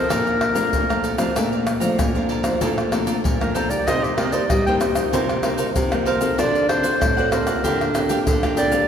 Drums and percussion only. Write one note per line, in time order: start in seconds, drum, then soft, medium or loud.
0.10 pandeiro medium
0.10 tamborim medium
0.10 shaker medium
0.10 surdo medium
0.27 pandeiro soft
0.27 shaker soft
0.41 pandeiro medium
0.41 tamborim medium
0.55 pandeiro medium
0.55 shaker medium
0.73 pandeiro medium
0.73 shaker medium
0.73 surdo medium
0.90 pandeiro soft
0.90 tamborim medium
0.90 shaker soft
1.04 pandeiro medium
1.04 shaker medium
1.18 pandeiro medium
1.18 tamborim medium
1.18 shaker medium
1.36 pandeiro medium
1.36 tamborim medium
1.36 shaker medium
1.36 surdo medium
1.53 pandeiro soft
1.53 shaker soft
1.67 pandeiro medium
1.67 tamborim medium
1.67 shaker medium
1.81 pandeiro medium
1.81 shaker medium
1.99 pandeiro medium
1.99 tamborim medium
1.99 shaker medium
1.99 surdo loud
2.15 pandeiro soft
2.15 shaker soft
2.29 pandeiro medium
2.44 pandeiro medium
2.44 tamborim medium
2.44 shaker medium
2.61 pandeiro medium
2.61 shaker medium
2.61 surdo medium
2.78 pandeiro soft
2.78 tamborim medium
2.78 shaker soft
2.92 pandeiro medium
2.92 tamborim medium
2.92 shaker medium
3.07 pandeiro medium
3.07 shaker medium
3.25 pandeiro medium
3.25 shaker medium
3.25 surdo loud
3.41 pandeiro soft
3.41 tamborim medium
3.41 shaker soft
3.55 pandeiro medium
3.55 shaker medium
3.70 pandeiro medium
3.70 shaker medium
3.88 pandeiro medium
3.88 tamborim medium
3.88 shaker medium
3.88 surdo medium
4.04 pandeiro soft
4.04 shaker soft
4.18 pandeiro medium
4.18 tamborim medium
4.32 pandeiro medium
4.32 shaker medium
4.50 pandeiro medium
4.50 tamborim medium
4.50 shaker medium
4.50 surdo loud
4.67 pandeiro soft
4.67 shaker soft
4.81 pandeiro medium
4.81 tamborim medium
4.81 shaker medium
4.95 pandeiro medium
4.95 tamborim medium
4.95 shaker medium
5.13 pandeiro medium
5.13 shaker medium
5.13 surdo medium
5.29 pandeiro soft
5.29 tamborim medium
5.29 shaker soft
5.43 pandeiro medium
5.43 tamborim medium
5.43 shaker medium
5.58 pandeiro medium
5.58 shaker medium
5.76 pandeiro medium
5.76 shaker medium
5.76 surdo medium
5.92 pandeiro soft
5.92 tamborim medium
5.92 shaker soft
6.06 pandeiro medium
6.21 pandeiro medium
6.21 shaker medium
6.39 pandeiro medium
6.39 tamborim medium
6.39 shaker medium
6.39 surdo medium
6.55 pandeiro soft
6.55 shaker soft
6.69 pandeiro medium
6.69 tamborim medium
6.84 pandeiro medium
6.84 shaker medium
7.02 pandeiro medium
7.02 tamborim medium
7.02 shaker medium
7.02 surdo loud
7.18 pandeiro soft
7.18 shaker soft
7.32 pandeiro medium
7.32 tamborim medium
7.32 shaker medium
7.47 pandeiro medium
7.47 tamborim medium
7.47 shaker medium
7.64 pandeiro medium
7.64 shaker medium
7.64 surdo medium
7.81 pandeiro soft
7.81 tamborim medium
7.81 shaker soft
7.95 pandeiro medium
7.95 tamborim medium
7.95 shaker medium
8.09 pandeiro medium
8.09 shaker medium
8.27 pandeiro medium
8.27 shaker medium
8.27 surdo loud
8.43 pandeiro soft
8.43 tamborim medium
8.43 shaker soft
8.57 pandeiro medium
8.57 shaker medium
8.72 pandeiro medium
8.72 shaker medium